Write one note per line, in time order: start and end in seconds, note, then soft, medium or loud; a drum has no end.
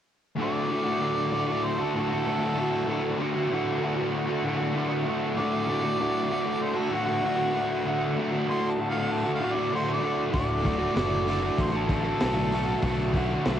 0.36 0.98 D2 medium
0.36 0.66 A2 medium
0.36 0.69 D3 loud
0.40 0.70 A3 medium
0.40 0.71 F#4 loud
0.40 1.67 D5 loud
0.67 0.98 A2 medium
0.67 0.87 D3 medium
0.67 0.86 A3 medium
0.72 0.83 F#4 medium
0.84 1.01 A3 medium
0.84 1.02 F#4 medium
0.88 1.00 D3 medium
0.98 2.24 D2 medium
0.98 1.28 A2 medium
0.98 1.31 D3 loud
0.98 1.33 A3 loud
1.02 1.34 F#4 loud
1.30 1.77 A2 medium
1.30 1.52 D3 medium
1.30 1.50 A3 medium
1.35 1.47 F#4 medium
1.47 1.81 A3 medium
1.47 1.77 F#4 medium
1.52 1.82 D3 medium
1.65 1.83 C5 medium
1.78 1.97 A3 medium
1.78 1.98 F#4 medium
1.82 1.95 D3 medium
1.82 1.94 A4 medium
1.94 2.24 A2 medium
1.94 2.13 D3 medium
1.94 2.10 A3 medium
1.94 3.16 A4 medium
1.99 2.08 F#4 medium
2.08 2.27 A3 medium
2.08 2.28 F#4 medium
2.14 2.26 D3 medium
2.24 2.84 D2 medium
2.24 2.53 A2 medium
2.24 2.43 D3 loud
2.24 2.41 A3 loud
2.24 2.38 F#4 loud
2.39 2.57 A3 medium
2.39 2.59 F#4 medium
2.44 2.56 D3 medium
2.54 2.85 A2 medium
2.54 2.87 D3 medium
2.54 2.88 A3 medium
2.60 2.89 F#4 medium
2.85 3.48 D2 loud
2.85 3.15 A2 medium
2.85 3.17 D3 loud
2.85 3.19 A3 loud
2.89 3.20 F#4 loud
3.16 3.49 A2 medium
3.16 3.37 D3 medium
3.16 3.35 A3 medium
3.20 3.33 F#4 medium
3.33 3.52 A3 medium
3.33 3.53 F#4 medium
3.37 3.51 D3 medium
3.49 4.73 D2 loud
3.49 3.78 A2 loud
3.49 3.81 D3 loud
3.49 3.82 A3 loud
3.54 3.84 F#4 loud
3.79 4.27 A2 medium
3.79 4.00 D3 medium
3.79 3.99 A3 medium
3.84 3.95 F#4 medium
3.96 4.30 A3 medium
3.96 4.27 F#4 medium
4.01 4.31 D3 medium
4.27 4.46 A3 medium
4.27 4.47 F#4 medium
4.32 4.44 D3 medium
4.43 4.74 A2 medium
4.43 4.62 D3 medium
4.43 4.60 A3 medium
4.48 4.57 F#4 medium
4.58 4.76 A3 medium
4.58 4.77 F#4 medium
4.62 4.75 D3 medium
4.73 5.35 D2 loud
4.73 5.03 A2 medium
4.73 4.94 D3 medium
4.73 4.91 A3 loud
4.78 4.88 F#4 loud
4.89 5.07 A3 medium
4.89 5.08 F#4 medium
4.94 5.05 D3 medium
5.04 5.35 A2 medium
5.04 5.37 D3 medium
5.04 5.39 A3 medium
5.09 5.40 F#4 medium
5.35 5.97 D2 medium
5.35 5.64 A2 medium
5.35 5.66 D3 medium
5.35 5.69 A3 loud
5.35 6.64 D5 loud
5.40 5.69 F#4 loud
5.65 5.98 A2 medium
5.65 5.86 D3 medium
5.65 5.83 A3 medium
5.70 5.81 F#4 medium
5.82 6.01 A3 medium
5.82 6.01 F#4 medium
5.86 5.99 D3 medium
5.97 7.21 D2 medium
5.97 6.26 A2 loud
5.97 6.29 D3 loud
5.97 6.31 A3 medium
6.02 6.32 F#4 loud
6.27 6.75 A2 medium
6.27 6.47 D3 medium
6.31 6.45 A3 medium
6.31 6.42 F#4 medium
6.42 6.77 A3 medium
6.42 6.74 F#4 medium
6.47 6.79 D3 medium
6.62 6.79 C5 medium
6.74 6.93 A3 medium
6.74 6.94 F#4 medium
6.74 6.95 A4 medium
6.80 6.91 D3 medium
6.89 7.22 A2 medium
6.89 7.11 D3 medium
6.93 7.08 A3 medium
6.93 8.13 F#4 loud
6.93 7.05 F#4 medium
7.06 7.25 A3 medium
7.06 7.26 F#4 medium
7.12 7.24 D3 medium
7.22 7.84 D2 medium
7.22 7.51 A2 medium
7.22 7.41 D3 medium
7.26 7.38 A3 loud
7.26 7.36 F#4 loud
7.36 7.55 A3 medium
7.36 7.57 F#4 medium
7.41 7.54 D3 medium
7.52 7.85 A2 medium
7.52 7.86 D3 medium
7.52 7.88 A3 medium
7.58 7.88 F#4 medium
7.84 8.46 D2 medium
7.84 8.13 A2 medium
7.84 8.16 D3 medium
7.88 8.17 A3 loud
7.88 8.19 F#4 loud
8.14 8.46 A2 medium
8.14 8.34 D3 medium
8.14 8.32 A3 medium
8.19 8.29 F#4 medium
8.30 8.49 A3 medium
8.30 8.50 F#4 medium
8.35 8.48 D3 medium
8.46 9.69 D2 medium
8.46 8.75 A2 medium
8.46 8.77 D3 loud
8.46 8.79 A3 medium
8.51 8.81 F#4 medium
8.51 8.73 C6 medium
8.71 8.90 A5 medium
8.76 9.24 A2 medium
8.76 8.96 D3 medium
8.76 8.94 A3 medium
8.82 8.91 F#4 medium
8.90 9.23 F#4 medium
8.90 9.14 F5 medium
8.95 9.28 D3 medium
8.95 9.26 A3 medium
9.13 9.31 A5 medium
9.23 9.41 A3 medium
9.23 9.42 F#4 medium
9.28 9.40 D3 medium
9.34 9.70 A2 medium
9.34 9.54 F5 medium
9.40 9.59 D3 medium
9.40 9.57 A3 medium
9.40 9.55 F#4 medium
9.53 9.75 F#4 medium
9.53 9.72 D5 medium
9.58 9.72 D3 medium
9.58 9.73 A3 medium
9.70 10.30 D2 medium
9.70 9.98 A2 loud
9.70 9.89 D3 medium
9.70 9.87 A3 medium
9.75 9.85 F#4 loud
9.75 9.93 C5 medium
9.85 10.03 A3 medium
9.85 10.05 F#4 medium
9.89 10.02 D3 medium
9.93 10.23 D5 medium
10.00 10.31 A2 medium
10.00 10.33 D3 medium
10.00 10.34 A3 medium
10.05 10.35 F#4 medium
10.30 10.92 D2 medium
10.30 10.61 A2 medium
10.30 10.63 D3 loud
10.30 kick loud
10.30 open hi-hat medium
10.34 10.86 D1 medium
10.34 10.65 A3 loud
10.34 10.66 F#4 medium
10.34 11.63 D5 loud
10.62 10.92 A2 medium
10.62 10.82 D3 medium
10.62 10.80 A3 medium
10.62 kick medium
10.62 open hi-hat medium
10.67 10.78 F#4 medium
10.78 10.96 A3 medium
10.78 10.97 F#4 medium
10.83 10.94 D3 medium
10.92 11.48 F#1 medium
10.92 12.17 D2 medium
10.92 11.24 A2 medium
10.92 11.26 D3 medium
10.92 11.28 A3 loud
10.96 11.29 F#4 loud
10.96 snare loud
10.96 open hi-hat medium
11.25 11.73 A2 medium
11.25 11.44 D3 medium
11.25 11.43 A3 medium
11.25 open hi-hat medium
11.30 11.39 F#4 medium
11.40 11.74 A3 medium
11.40 11.70 F#4 medium
11.45 11.75 D3 medium
11.58 12.10 A1 medium
11.58 11.78 C5 medium
11.58 kick medium
11.58 open hi-hat medium
11.71 11.90 A3 medium
11.71 11.90 F#4 medium
11.76 11.87 D3 medium
11.76 11.90 A4 medium
11.86 12.18 A2 medium
11.86 12.05 D3 medium
11.86 kick medium
11.86 open hi-hat medium
11.90 12.04 A3 medium
11.90 12.01 F#4 medium
11.90 13.12 A4 loud
12.02 12.21 A3 medium
12.02 12.21 F#4 medium
12.06 12.19 D3 medium
12.18 12.66 D2 medium
12.18 12.48 A2 medium
12.18 12.37 D3 medium
12.18 12.36 A3 medium
12.18 snare loud
12.18 open hi-hat medium
12.22 12.74 B1 medium
12.22 12.32 F#4 loud
12.33 12.53 A3 medium
12.33 12.53 F#4 medium
12.38 12.50 D3 medium
12.50 12.80 A2 medium
12.50 12.82 D3 medium
12.50 12.83 A3 medium
12.50 open hi-hat medium
12.55 12.84 F#4 medium
12.80 13.35 B1 medium
12.80 13.41 D2 medium
12.80 13.10 A2 medium
12.80 13.12 D3 loud
12.80 13.15 A3 medium
12.80 kick loud
12.80 open hi-hat medium
12.85 13.16 F#4 loud
13.11 13.43 A2 medium
13.11 13.31 D3 medium
13.11 13.30 A3 medium
13.11 kick medium
13.11 open hi-hat medium
13.17 13.26 F#4 medium
13.27 13.46 A3 medium
13.27 13.47 F#4 medium
13.32 13.44 D3 medium
13.43 13.60 B1 medium
13.43 13.60 D2 loud
13.43 13.60 A2 medium
13.43 13.60 D3 loud
13.43 13.60 A3 loud
13.43 snare loud
13.43 open hi-hat medium
13.48 13.60 F#4 loud